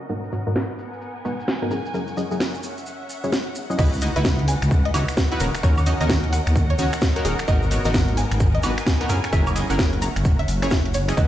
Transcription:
Already playing: string section C#4 A#4 D#5 F#5
0.09 synth stab G#2 B3 D#4 F#4 A#4, string section B3, maracas
0.24 maracas
0.32 synth stab G#2 B3 D#4 F#4 C#5, maracas
0.47 synth stab G#2 B3 D#4 F#4 A#4, maracas
0.56 snare, maracas
0.79 maracas
0.83 string section G#5
0.94 maracas
1.01 maracas
1.25 synth stab G#2 B3 D#4 F#4 B4, maracas
1.40 maracas
1.48 snare, maracas
1.62 synth stab G#2 B3 D#4 F#4 A#4
1.71 synth stab F#3 C#4 E4 G#4 A#4, string section C#4, maracas
1.86 maracas
1.94 synth stab F#3 C#4 E4 G#4 A#4, maracas
2.07 maracas
2.17 synth stab F#3 C#4 E4 G#4 D#5, maracas
2.31 synth stab F#3 C#4 E4 G#4 A#4, maracas
2.40 snare, maracas
2.55 maracas
2.63 string section E5, maracas
2.77 maracas
2.86 maracas
3.10 maracas
3.24 synth stab F#3 C#4 E4 G#4 C#5, maracas
3.32 snare, maracas
3.55 maracas
3.70 synth stab F#3 C#4 E4 G#4 D#5, maracas
3.78 wobble bass C#2, string section E3, synth stab D#4 E4 F#4 B4, synth pluck D#5, kick, crash, maracas
3.94 maracas
4.01 synth stab D#4 E4 F#4 D#5, open hi-hat, maracas
4.10 string section B4
4.16 wobble bass C#2, synth stab D#4 E4 F#4 B4, synth pluck E5, closed hi-hat, maracas
4.25 string section D#5, kick, snare, maracas
4.39 closed hi-hat
4.48 synth pluck G#5, open hi-hat, maracas
4.62 wobble bass C#2, finger snap, closed hi-hat, maracas
4.71 kick, maracas
4.85 synth pluck D#5, closed hi-hat
4.94 wobble bass C#2, synth stab D#4 E4 F#4 C#5, open hi-hat, high woodblock, maracas
5.08 finger snap, closed hi-hat, maracas
5.17 kick, snare, maracas
5.32 synth stab D#4 E4 F#4 B4, closed hi-hat
5.40 wobble bass D#1, string section C#4, synth stab C#4 D#4 F#4 A#4, synth pluck A#4, open hi-hat, maracas
5.52 string section A#4, finger snap, closed hi-hat, maracas
5.63 wobble bass D#2, synth stab C#4 D#4 F#4 A#4, synth pluck C#5, kick, maracas
5.78 high woodblock, maracas
5.86 synth stab C#4 D#4 F#4 D#5, open hi-hat, maracas
6.01 wobble bass D#2, synth stab C#4 D#4 F#4 A#4, synth pluck D#5, closed hi-hat, maracas
6.09 kick, snare, maracas
6.24 closed hi-hat
6.33 synth pluck F#5, open hi-hat, maracas
6.47 wobble bass D#2, finger snap, closed hi-hat, maracas
6.56 kick, maracas
6.70 synth pluck C#5, closed hi-hat
6.79 wobble bass D#2, synth stab C#4 D#4 F#4 C#5, open hi-hat, maracas
6.93 finger snap, closed hi-hat, maracas
7.01 kick, snare, maracas
7.16 synth stab C#4 D#4 F#4 A#4, closed hi-hat
7.25 wobble bass D#1, synth stab C#4 D#4 F#4 A#4, synth pluck G#4, open hi-hat, maracas
7.39 finger snap, closed hi-hat, maracas
7.48 wobble bass G#1, synth stab B3 D#4 F#4 A#4, string section B3, synth pluck D#5, kick, maracas
7.63 maracas
7.71 synth stab B3 D#4 F#4 C#5, open hi-hat, maracas
7.85 wobble bass G#1, synth stab B3 D#4 F#4 A#4, synth pluck D#5, closed hi-hat, maracas
7.94 kick, snare, maracas
8.08 closed hi-hat
8.17 synth pluck G#5, open hi-hat, maracas
8.22 string section G#5
8.31 wobble bass G#1, finger snap, closed hi-hat, maracas
8.40 kick, maracas
8.54 synth pluck D#5, closed hi-hat
8.63 wobble bass G#1, synth stab B3 D#4 F#4 B4, open hi-hat, high woodblock, maracas
8.78 finger snap, closed hi-hat, maracas
8.87 kick, snare, maracas
9.00 synth stab B3 D#4 F#4 A#4, closed hi-hat
9.09 wobble bass F#2, string section C#4, synth stab C#4 E4 G#4 A#4, synth pluck A#4, open hi-hat, maracas
9.24 finger snap, closed hi-hat, maracas
9.32 wobble bass F#1, synth stab C#4 E4 G#4 A#4, synth pluck E5, kick, maracas
9.47 high woodblock, maracas
9.55 synth stab C#4 E4 G#4 D#5, open hi-hat, maracas
9.70 wobble bass F#1, synth stab C#4 E4 G#4 A#4, synth pluck F#5, closed hi-hat, maracas
9.79 kick, snare, maracas
9.93 closed hi-hat
9.97 string section E5
10.02 synth pluck A#5, open hi-hat, maracas
10.16 wobble bass F#1, finger snap, closed hi-hat, maracas
10.25 kick, maracas
10.39 synth pluck E5, closed hi-hat
10.48 wobble bass F#1, open hi-hat, maracas
10.62 synth stab C#4 E4 G#4 C#5, finger snap, closed hi-hat, maracas
10.70 kick, snare, maracas
10.85 closed hi-hat
10.94 synth pluck C#5, open hi-hat, maracas
11.08 synth stab C#4 E4 G#4 D#5, finger snap, closed hi-hat, maracas
11.17 wobble bass C#2, string section E3, synth stab D#4 E4 F#4 B4, synth pluck D#5, kick, maracas

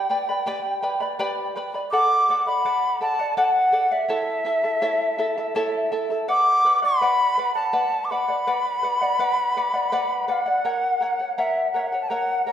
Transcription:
Already playing: quena G5
0.10 charango B4 D5 G5 B5
0.29 charango B4 D5 B5
0.46 charango G4 B4 D5 G5 B5
0.83 charango B4 D5 G5 B5
1.00 charango B4 D5 B5
1.19 charango G4 B4 D5 G5 B5
1.56 charango B4 D5 G5 B5
1.74 charango B4 D5 B5
1.91 charango A4 D5 F#5, quena D6
2.29 charango A4 D5 F#5
2.46 charango D5 F#5, quena B5
2.65 charango A4 D5 F#5
3.01 charango A4 D5 F#5, quena A5
3.19 charango D5 F#5
3.37 charango A4 D5 F#5, quena F#5
3.45 quena A5
3.52 quena F#5
3.72 charango A4 D5 F#5
3.91 charango D5 F#5, quena E5
4.08 charango E4 A4 C#5 E5 A5
4.45 charango E4 A4 E5 A5
4.64 charango E4 A4 A5
4.82 charango E4 A4 C#5 E5 A5
5.18 charango E4 A4 E5 A5
5.38 charango E4 A4 A5
5.55 charango E4 A4 C#5 E5 A5
5.92 charango E4 A4 E5 A5
6.10 charango E4 A4 A5
6.28 charango B4 D5 F#5, quena D6
6.65 charango B4 D5 F#5
6.82 charango D5 F#5, quena B5
7.01 charango B4 D5 F#5
7.38 charango B4 D5 F#5
7.55 charango D5 F#5, quena A5
7.73 charango B4 D5 F#5
8.05 quena D6
8.11 charango B4 D5 F#5, quena B5
8.28 charango D5 F#5
8.47 charango B4 D5 F#5
8.83 charango B4 D5 F#5
9.01 charango D5 F#5
9.19 charango B4 D5 F#5
9.56 charango B4 D5 F#5
9.74 charango D5 F#5
9.92 charango B4 D5 F#5
10.28 charango B4 D5 F#5, quena F#5
10.46 charango D5 F#5
10.65 charango A#4 C#5 F#5
11.00 charango A#4 C#5 F#5
11.19 charango C#5 F#5
11.37 charango A#4 C#5 F#5, quena E5
11.73 charango A#4 C#5 F#5, quena F#5
11.80 quena E5
11.87 quena F#5
11.92 charango C#5 F#5
12.02 quena A5
12.09 charango A#4 C#5 F#5, quena F#5
12.46 charango A#4 C#5 F#5, quena A#5

